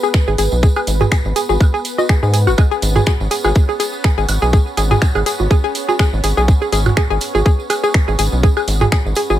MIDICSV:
0, 0, Header, 1, 5, 480
1, 0, Start_track
1, 0, Key_signature, 5, "minor"
1, 0, Tempo, 487805
1, 619, Time_signature, 4, 2, 24, 8
1, 9245, End_track
2, 0, Start_track
2, 0, Title_t, "Synth arpeggio sound"
2, 0, Program_c, 0, 84
2, 32, Note_on_c, 0, 68, 106
2, 52, Note_off_c, 0, 68, 0
2, 272, Note_on_c, 0, 68, 101
2, 300, Note_off_c, 0, 68, 0
2, 378, Note_on_c, 0, 68, 102
2, 399, Note_off_c, 0, 68, 0
2, 618, Note_on_c, 0, 68, 102
2, 653, Note_off_c, 0, 68, 0
2, 752, Note_on_c, 0, 68, 98
2, 772, Note_off_c, 0, 68, 0
2, 991, Note_on_c, 0, 68, 102
2, 1019, Note_off_c, 0, 68, 0
2, 1096, Note_on_c, 0, 68, 99
2, 1118, Note_off_c, 0, 68, 0
2, 1337, Note_on_c, 0, 68, 102
2, 1372, Note_off_c, 0, 68, 0
2, 1469, Note_on_c, 0, 68, 100
2, 1488, Note_off_c, 0, 68, 0
2, 1711, Note_on_c, 0, 68, 104
2, 1739, Note_off_c, 0, 68, 0
2, 1952, Note_on_c, 0, 75, 80
2, 1980, Note_off_c, 0, 75, 0
2, 2059, Note_on_c, 0, 68, 83
2, 2110, Note_off_c, 0, 68, 0
2, 2191, Note_on_c, 0, 68, 79
2, 2233, Note_off_c, 0, 68, 0
2, 2298, Note_on_c, 0, 68, 79
2, 2333, Note_off_c, 0, 68, 0
2, 2431, Note_on_c, 0, 66, 100
2, 2473, Note_off_c, 0, 66, 0
2, 2537, Note_on_c, 0, 68, 106
2, 2572, Note_off_c, 0, 68, 0
2, 2670, Note_on_c, 0, 68, 105
2, 2690, Note_off_c, 0, 68, 0
2, 2909, Note_on_c, 0, 68, 104
2, 2938, Note_off_c, 0, 68, 0
2, 3018, Note_on_c, 0, 68, 98
2, 3039, Note_off_c, 0, 68, 0
2, 3257, Note_on_c, 0, 68, 101
2, 3292, Note_off_c, 0, 68, 0
2, 3390, Note_on_c, 0, 68, 102
2, 3409, Note_off_c, 0, 68, 0
2, 3629, Note_on_c, 0, 68, 106
2, 3658, Note_off_c, 0, 68, 0
2, 3736, Note_on_c, 0, 68, 105
2, 3758, Note_off_c, 0, 68, 0
2, 3975, Note_on_c, 0, 68, 104
2, 4011, Note_off_c, 0, 68, 0
2, 4110, Note_on_c, 0, 68, 103
2, 4130, Note_off_c, 0, 68, 0
2, 4350, Note_on_c, 0, 68, 105
2, 4378, Note_off_c, 0, 68, 0
2, 4458, Note_on_c, 0, 68, 105
2, 4479, Note_off_c, 0, 68, 0
2, 4697, Note_on_c, 0, 68, 104
2, 4732, Note_off_c, 0, 68, 0
2, 4830, Note_on_c, 0, 68, 103
2, 4850, Note_off_c, 0, 68, 0
2, 5070, Note_on_c, 0, 68, 107
2, 5098, Note_off_c, 0, 68, 0
2, 5177, Note_on_c, 0, 68, 105
2, 5199, Note_off_c, 0, 68, 0
2, 5417, Note_on_c, 0, 68, 103
2, 5452, Note_off_c, 0, 68, 0
2, 5549, Note_on_c, 0, 68, 106
2, 5569, Note_off_c, 0, 68, 0
2, 5791, Note_on_c, 0, 68, 104
2, 5819, Note_off_c, 0, 68, 0
2, 5897, Note_on_c, 0, 68, 108
2, 5919, Note_off_c, 0, 68, 0
2, 6138, Note_on_c, 0, 68, 102
2, 6172, Note_off_c, 0, 68, 0
2, 6271, Note_on_c, 0, 68, 102
2, 6291, Note_off_c, 0, 68, 0
2, 6510, Note_on_c, 0, 68, 104
2, 6539, Note_off_c, 0, 68, 0
2, 6617, Note_on_c, 0, 68, 105
2, 6639, Note_off_c, 0, 68, 0
2, 6858, Note_on_c, 0, 68, 105
2, 6893, Note_off_c, 0, 68, 0
2, 6990, Note_on_c, 0, 68, 102
2, 7010, Note_off_c, 0, 68, 0
2, 7230, Note_on_c, 0, 68, 102
2, 7259, Note_off_c, 0, 68, 0
2, 7336, Note_on_c, 0, 68, 105
2, 7358, Note_off_c, 0, 68, 0
2, 7575, Note_on_c, 0, 68, 96
2, 7611, Note_off_c, 0, 68, 0
2, 7710, Note_on_c, 0, 68, 108
2, 7730, Note_off_c, 0, 68, 0
2, 7950, Note_on_c, 0, 68, 101
2, 7978, Note_off_c, 0, 68, 0
2, 8057, Note_on_c, 0, 68, 105
2, 8078, Note_off_c, 0, 68, 0
2, 8297, Note_on_c, 0, 68, 104
2, 8332, Note_off_c, 0, 68, 0
2, 8431, Note_on_c, 0, 68, 105
2, 8451, Note_off_c, 0, 68, 0
2, 8671, Note_on_c, 0, 68, 105
2, 8699, Note_off_c, 0, 68, 0
2, 8778, Note_on_c, 0, 68, 106
2, 8799, Note_off_c, 0, 68, 0
2, 9019, Note_on_c, 0, 68, 105
2, 9053, Note_off_c, 0, 68, 0
2, 9153, Note_on_c, 0, 68, 99
2, 9172, Note_off_c, 0, 68, 0
2, 9245, End_track
3, 0, Start_track
3, 0, Title_t, "Synth texture"
3, 0, Program_c, 1, 99
3, 0, Note_on_c, 1, 59, 86
3, 0, Note_on_c, 1, 71, 85
3, 2540, Note_on_c, 1, 61, 84
3, 2565, Note_off_c, 1, 71, 0
3, 9245, Note_off_c, 1, 59, 0
3, 9245, Note_off_c, 1, 61, 0
3, 9245, End_track
4, 0, Start_track
4, 0, Title_t, "Analog synth bass"
4, 0, Program_c, 2, 38
4, 272, Note_on_c, 2, 32, 97
4, 348, Note_off_c, 2, 32, 0
4, 378, Note_on_c, 2, 32, 82
4, 474, Note_off_c, 2, 32, 0
4, 512, Note_on_c, 2, 35, 92
4, 676, Note_off_c, 2, 35, 0
4, 860, Note_on_c, 2, 32, 98
4, 1038, Note_off_c, 2, 32, 0
4, 1231, Note_on_c, 2, 32, 98
4, 1308, Note_off_c, 2, 32, 0
4, 1472, Note_on_c, 2, 32, 82
4, 1548, Note_off_c, 2, 32, 0
4, 2192, Note_on_c, 2, 44, 98
4, 2432, Note_on_c, 2, 32, 79
4, 2447, Note_off_c, 2, 44, 0
4, 2508, Note_off_c, 2, 32, 0
4, 2779, Note_on_c, 2, 32, 96
4, 2958, Note_off_c, 2, 32, 0
4, 3152, Note_on_c, 2, 32, 101
4, 3228, Note_off_c, 2, 32, 0
4, 3392, Note_on_c, 2, 32, 80
4, 3468, Note_off_c, 2, 32, 0
4, 4111, Note_on_c, 2, 32, 93
4, 4188, Note_off_c, 2, 32, 0
4, 4217, Note_on_c, 2, 32, 83
4, 4313, Note_off_c, 2, 32, 0
4, 4351, Note_on_c, 2, 35, 92
4, 4515, Note_off_c, 2, 35, 0
4, 4698, Note_on_c, 2, 32, 96
4, 4877, Note_off_c, 2, 32, 0
4, 5071, Note_on_c, 2, 32, 101
4, 5148, Note_off_c, 2, 32, 0
4, 5312, Note_on_c, 2, 32, 83
4, 5388, Note_off_c, 2, 32, 0
4, 6032, Note_on_c, 2, 32, 95
4, 6108, Note_off_c, 2, 32, 0
4, 6137, Note_on_c, 2, 32, 83
4, 6233, Note_off_c, 2, 32, 0
4, 6271, Note_on_c, 2, 35, 92
4, 6435, Note_off_c, 2, 35, 0
4, 6617, Note_on_c, 2, 32, 102
4, 6797, Note_off_c, 2, 32, 0
4, 6992, Note_on_c, 2, 32, 97
4, 7068, Note_off_c, 2, 32, 0
4, 7231, Note_on_c, 2, 32, 81
4, 7307, Note_off_c, 2, 32, 0
4, 7951, Note_on_c, 2, 32, 98
4, 8027, Note_off_c, 2, 32, 0
4, 8058, Note_on_c, 2, 32, 85
4, 8154, Note_off_c, 2, 32, 0
4, 8192, Note_on_c, 2, 35, 92
4, 8355, Note_off_c, 2, 35, 0
4, 8538, Note_on_c, 2, 32, 97
4, 8717, Note_off_c, 2, 32, 0
4, 8912, Note_on_c, 2, 32, 98
4, 8988, Note_off_c, 2, 32, 0
4, 9152, Note_on_c, 2, 32, 85
4, 9228, Note_off_c, 2, 32, 0
4, 9245, End_track
5, 0, Start_track
5, 0, Title_t, "Drums"
5, 35, Note_on_c, 9, 54, 43
5, 134, Note_off_c, 9, 54, 0
5, 137, Note_on_c, 9, 26, 96
5, 137, Note_on_c, 9, 54, 54
5, 139, Note_on_c, 9, 36, 126
5, 235, Note_off_c, 9, 54, 0
5, 236, Note_off_c, 9, 26, 0
5, 238, Note_off_c, 9, 36, 0
5, 271, Note_on_c, 9, 54, 26
5, 369, Note_off_c, 9, 54, 0
5, 378, Note_on_c, 9, 46, 86
5, 383, Note_on_c, 9, 54, 95
5, 476, Note_off_c, 9, 46, 0
5, 481, Note_off_c, 9, 54, 0
5, 509, Note_on_c, 9, 54, 42
5, 608, Note_off_c, 9, 54, 0
5, 619, Note_on_c, 9, 36, 126
5, 621, Note_on_c, 9, 54, 61
5, 718, Note_off_c, 9, 36, 0
5, 719, Note_off_c, 9, 54, 0
5, 747, Note_on_c, 9, 54, 30
5, 752, Note_on_c, 9, 76, 66
5, 846, Note_off_c, 9, 54, 0
5, 850, Note_off_c, 9, 76, 0
5, 858, Note_on_c, 9, 46, 78
5, 859, Note_on_c, 9, 54, 97
5, 956, Note_off_c, 9, 46, 0
5, 958, Note_off_c, 9, 54, 0
5, 992, Note_on_c, 9, 45, 99
5, 992, Note_on_c, 9, 54, 36
5, 992, Note_on_c, 9, 61, 76
5, 1090, Note_off_c, 9, 45, 0
5, 1090, Note_off_c, 9, 54, 0
5, 1090, Note_off_c, 9, 61, 0
5, 1096, Note_on_c, 9, 54, 55
5, 1099, Note_on_c, 9, 26, 92
5, 1099, Note_on_c, 9, 36, 120
5, 1194, Note_off_c, 9, 54, 0
5, 1198, Note_off_c, 9, 26, 0
5, 1198, Note_off_c, 9, 36, 0
5, 1228, Note_on_c, 9, 54, 25
5, 1327, Note_off_c, 9, 54, 0
5, 1338, Note_on_c, 9, 46, 78
5, 1338, Note_on_c, 9, 54, 96
5, 1436, Note_off_c, 9, 46, 0
5, 1437, Note_off_c, 9, 54, 0
5, 1472, Note_on_c, 9, 61, 61
5, 1474, Note_on_c, 9, 54, 42
5, 1571, Note_off_c, 9, 61, 0
5, 1572, Note_off_c, 9, 54, 0
5, 1579, Note_on_c, 9, 36, 127
5, 1579, Note_on_c, 9, 76, 66
5, 1588, Note_on_c, 9, 54, 53
5, 1678, Note_off_c, 9, 36, 0
5, 1678, Note_off_c, 9, 76, 0
5, 1687, Note_off_c, 9, 54, 0
5, 1720, Note_on_c, 9, 54, 26
5, 1818, Note_off_c, 9, 54, 0
5, 1819, Note_on_c, 9, 46, 85
5, 1819, Note_on_c, 9, 54, 91
5, 1917, Note_off_c, 9, 46, 0
5, 1917, Note_off_c, 9, 54, 0
5, 1952, Note_on_c, 9, 61, 85
5, 1956, Note_on_c, 9, 54, 41
5, 2051, Note_off_c, 9, 61, 0
5, 2055, Note_off_c, 9, 54, 0
5, 2059, Note_on_c, 9, 26, 96
5, 2059, Note_on_c, 9, 36, 126
5, 2060, Note_on_c, 9, 54, 52
5, 2158, Note_off_c, 9, 26, 0
5, 2158, Note_off_c, 9, 36, 0
5, 2159, Note_off_c, 9, 54, 0
5, 2196, Note_on_c, 9, 54, 27
5, 2295, Note_off_c, 9, 54, 0
5, 2297, Note_on_c, 9, 54, 93
5, 2299, Note_on_c, 9, 46, 80
5, 2396, Note_off_c, 9, 54, 0
5, 2397, Note_off_c, 9, 46, 0
5, 2432, Note_on_c, 9, 76, 62
5, 2433, Note_on_c, 9, 54, 45
5, 2531, Note_off_c, 9, 54, 0
5, 2531, Note_off_c, 9, 76, 0
5, 2536, Note_on_c, 9, 54, 51
5, 2539, Note_on_c, 9, 36, 121
5, 2539, Note_on_c, 9, 76, 66
5, 2634, Note_off_c, 9, 54, 0
5, 2637, Note_off_c, 9, 76, 0
5, 2638, Note_off_c, 9, 36, 0
5, 2675, Note_on_c, 9, 54, 28
5, 2773, Note_off_c, 9, 54, 0
5, 2778, Note_on_c, 9, 46, 83
5, 2780, Note_on_c, 9, 54, 100
5, 2876, Note_off_c, 9, 46, 0
5, 2878, Note_off_c, 9, 54, 0
5, 2912, Note_on_c, 9, 45, 95
5, 2912, Note_on_c, 9, 61, 74
5, 2914, Note_on_c, 9, 54, 39
5, 3010, Note_off_c, 9, 45, 0
5, 3010, Note_off_c, 9, 61, 0
5, 3013, Note_off_c, 9, 54, 0
5, 3014, Note_on_c, 9, 54, 60
5, 3019, Note_on_c, 9, 26, 89
5, 3019, Note_on_c, 9, 36, 116
5, 3112, Note_off_c, 9, 54, 0
5, 3117, Note_off_c, 9, 26, 0
5, 3118, Note_off_c, 9, 36, 0
5, 3152, Note_on_c, 9, 54, 28
5, 3251, Note_off_c, 9, 54, 0
5, 3256, Note_on_c, 9, 54, 88
5, 3259, Note_on_c, 9, 46, 82
5, 3355, Note_off_c, 9, 54, 0
5, 3357, Note_off_c, 9, 46, 0
5, 3391, Note_on_c, 9, 61, 59
5, 3391, Note_on_c, 9, 76, 66
5, 3395, Note_on_c, 9, 54, 40
5, 3490, Note_off_c, 9, 61, 0
5, 3490, Note_off_c, 9, 76, 0
5, 3494, Note_off_c, 9, 54, 0
5, 3494, Note_on_c, 9, 54, 60
5, 3499, Note_on_c, 9, 36, 120
5, 3592, Note_off_c, 9, 54, 0
5, 3598, Note_off_c, 9, 36, 0
5, 3634, Note_on_c, 9, 54, 28
5, 3732, Note_off_c, 9, 54, 0
5, 3738, Note_on_c, 9, 46, 85
5, 3738, Note_on_c, 9, 54, 92
5, 3837, Note_off_c, 9, 46, 0
5, 3837, Note_off_c, 9, 54, 0
5, 3870, Note_on_c, 9, 54, 38
5, 3969, Note_off_c, 9, 54, 0
5, 3976, Note_on_c, 9, 54, 47
5, 3978, Note_on_c, 9, 26, 88
5, 3979, Note_on_c, 9, 36, 116
5, 4075, Note_off_c, 9, 54, 0
5, 4076, Note_off_c, 9, 26, 0
5, 4078, Note_off_c, 9, 36, 0
5, 4113, Note_on_c, 9, 54, 28
5, 4212, Note_off_c, 9, 54, 0
5, 4217, Note_on_c, 9, 46, 85
5, 4219, Note_on_c, 9, 54, 86
5, 4219, Note_on_c, 9, 76, 64
5, 4315, Note_off_c, 9, 46, 0
5, 4317, Note_off_c, 9, 54, 0
5, 4317, Note_off_c, 9, 76, 0
5, 4353, Note_on_c, 9, 54, 45
5, 4451, Note_off_c, 9, 54, 0
5, 4457, Note_on_c, 9, 54, 49
5, 4459, Note_on_c, 9, 36, 118
5, 4555, Note_off_c, 9, 54, 0
5, 4558, Note_off_c, 9, 36, 0
5, 4595, Note_on_c, 9, 54, 24
5, 4694, Note_off_c, 9, 54, 0
5, 4696, Note_on_c, 9, 54, 88
5, 4697, Note_on_c, 9, 46, 83
5, 4795, Note_off_c, 9, 54, 0
5, 4796, Note_off_c, 9, 46, 0
5, 4832, Note_on_c, 9, 45, 96
5, 4832, Note_on_c, 9, 61, 70
5, 4833, Note_on_c, 9, 54, 40
5, 4930, Note_off_c, 9, 45, 0
5, 4930, Note_off_c, 9, 61, 0
5, 4931, Note_off_c, 9, 54, 0
5, 4937, Note_on_c, 9, 26, 88
5, 4939, Note_on_c, 9, 36, 112
5, 4940, Note_on_c, 9, 54, 54
5, 5035, Note_off_c, 9, 26, 0
5, 5037, Note_off_c, 9, 36, 0
5, 5039, Note_off_c, 9, 54, 0
5, 5071, Note_on_c, 9, 76, 68
5, 5076, Note_on_c, 9, 54, 29
5, 5170, Note_off_c, 9, 76, 0
5, 5174, Note_off_c, 9, 54, 0
5, 5178, Note_on_c, 9, 46, 84
5, 5184, Note_on_c, 9, 54, 92
5, 5277, Note_off_c, 9, 46, 0
5, 5282, Note_off_c, 9, 54, 0
5, 5308, Note_on_c, 9, 54, 36
5, 5311, Note_on_c, 9, 61, 58
5, 5407, Note_off_c, 9, 54, 0
5, 5409, Note_off_c, 9, 61, 0
5, 5419, Note_on_c, 9, 36, 112
5, 5427, Note_on_c, 9, 54, 54
5, 5517, Note_off_c, 9, 36, 0
5, 5525, Note_off_c, 9, 54, 0
5, 5551, Note_on_c, 9, 54, 25
5, 5649, Note_off_c, 9, 54, 0
5, 5658, Note_on_c, 9, 46, 87
5, 5660, Note_on_c, 9, 54, 86
5, 5756, Note_off_c, 9, 46, 0
5, 5758, Note_off_c, 9, 54, 0
5, 5791, Note_on_c, 9, 61, 76
5, 5793, Note_on_c, 9, 54, 38
5, 5890, Note_off_c, 9, 61, 0
5, 5892, Note_off_c, 9, 54, 0
5, 5898, Note_on_c, 9, 26, 92
5, 5898, Note_on_c, 9, 76, 67
5, 5899, Note_on_c, 9, 36, 116
5, 5905, Note_on_c, 9, 54, 51
5, 5996, Note_off_c, 9, 26, 0
5, 5996, Note_off_c, 9, 76, 0
5, 5997, Note_off_c, 9, 36, 0
5, 6003, Note_off_c, 9, 54, 0
5, 6035, Note_on_c, 9, 54, 24
5, 6134, Note_off_c, 9, 54, 0
5, 6136, Note_on_c, 9, 54, 87
5, 6137, Note_on_c, 9, 46, 85
5, 6234, Note_off_c, 9, 54, 0
5, 6236, Note_off_c, 9, 46, 0
5, 6276, Note_on_c, 9, 54, 43
5, 6375, Note_off_c, 9, 54, 0
5, 6379, Note_on_c, 9, 36, 114
5, 6384, Note_on_c, 9, 54, 48
5, 6477, Note_off_c, 9, 36, 0
5, 6483, Note_off_c, 9, 54, 0
5, 6512, Note_on_c, 9, 54, 25
5, 6611, Note_off_c, 9, 54, 0
5, 6617, Note_on_c, 9, 46, 86
5, 6625, Note_on_c, 9, 54, 81
5, 6715, Note_off_c, 9, 46, 0
5, 6723, Note_off_c, 9, 54, 0
5, 6748, Note_on_c, 9, 54, 36
5, 6751, Note_on_c, 9, 45, 95
5, 6751, Note_on_c, 9, 61, 72
5, 6751, Note_on_c, 9, 76, 70
5, 6846, Note_off_c, 9, 54, 0
5, 6850, Note_off_c, 9, 45, 0
5, 6850, Note_off_c, 9, 61, 0
5, 6850, Note_off_c, 9, 76, 0
5, 6856, Note_on_c, 9, 54, 53
5, 6858, Note_on_c, 9, 26, 95
5, 6859, Note_on_c, 9, 36, 109
5, 6955, Note_off_c, 9, 54, 0
5, 6956, Note_off_c, 9, 26, 0
5, 6957, Note_off_c, 9, 36, 0
5, 6991, Note_on_c, 9, 54, 23
5, 7089, Note_off_c, 9, 54, 0
5, 7092, Note_on_c, 9, 54, 89
5, 7097, Note_on_c, 9, 46, 88
5, 7190, Note_off_c, 9, 54, 0
5, 7196, Note_off_c, 9, 46, 0
5, 7231, Note_on_c, 9, 61, 56
5, 7232, Note_on_c, 9, 54, 35
5, 7329, Note_off_c, 9, 61, 0
5, 7330, Note_off_c, 9, 54, 0
5, 7336, Note_on_c, 9, 54, 46
5, 7339, Note_on_c, 9, 36, 115
5, 7434, Note_off_c, 9, 54, 0
5, 7437, Note_off_c, 9, 36, 0
5, 7474, Note_on_c, 9, 54, 26
5, 7573, Note_off_c, 9, 54, 0
5, 7577, Note_on_c, 9, 46, 93
5, 7577, Note_on_c, 9, 76, 68
5, 7580, Note_on_c, 9, 54, 76
5, 7675, Note_off_c, 9, 76, 0
5, 7676, Note_off_c, 9, 46, 0
5, 7678, Note_off_c, 9, 54, 0
5, 7712, Note_on_c, 9, 54, 38
5, 7811, Note_off_c, 9, 54, 0
5, 7816, Note_on_c, 9, 26, 95
5, 7818, Note_on_c, 9, 54, 45
5, 7819, Note_on_c, 9, 36, 116
5, 7914, Note_off_c, 9, 26, 0
5, 7916, Note_off_c, 9, 54, 0
5, 7917, Note_off_c, 9, 36, 0
5, 7954, Note_on_c, 9, 54, 27
5, 8053, Note_off_c, 9, 54, 0
5, 8057, Note_on_c, 9, 46, 91
5, 8059, Note_on_c, 9, 54, 96
5, 8155, Note_off_c, 9, 46, 0
5, 8157, Note_off_c, 9, 54, 0
5, 8189, Note_on_c, 9, 54, 38
5, 8288, Note_off_c, 9, 54, 0
5, 8299, Note_on_c, 9, 36, 118
5, 8305, Note_on_c, 9, 54, 50
5, 8397, Note_off_c, 9, 36, 0
5, 8403, Note_off_c, 9, 54, 0
5, 8431, Note_on_c, 9, 76, 72
5, 8434, Note_on_c, 9, 54, 28
5, 8529, Note_off_c, 9, 76, 0
5, 8533, Note_off_c, 9, 54, 0
5, 8538, Note_on_c, 9, 46, 85
5, 8540, Note_on_c, 9, 54, 84
5, 8636, Note_off_c, 9, 46, 0
5, 8638, Note_off_c, 9, 54, 0
5, 8669, Note_on_c, 9, 54, 35
5, 8671, Note_on_c, 9, 45, 95
5, 8671, Note_on_c, 9, 61, 72
5, 8767, Note_off_c, 9, 54, 0
5, 8770, Note_off_c, 9, 45, 0
5, 8770, Note_off_c, 9, 61, 0
5, 8778, Note_on_c, 9, 26, 97
5, 8778, Note_on_c, 9, 54, 56
5, 8779, Note_on_c, 9, 36, 112
5, 8876, Note_off_c, 9, 26, 0
5, 8877, Note_off_c, 9, 36, 0
5, 8877, Note_off_c, 9, 54, 0
5, 8919, Note_on_c, 9, 54, 27
5, 9007, Note_off_c, 9, 54, 0
5, 9007, Note_on_c, 9, 54, 87
5, 9018, Note_on_c, 9, 46, 86
5, 9105, Note_off_c, 9, 54, 0
5, 9116, Note_off_c, 9, 46, 0
5, 9151, Note_on_c, 9, 54, 35
5, 9151, Note_on_c, 9, 61, 58
5, 9245, Note_off_c, 9, 54, 0
5, 9245, Note_off_c, 9, 61, 0
5, 9245, End_track
0, 0, End_of_file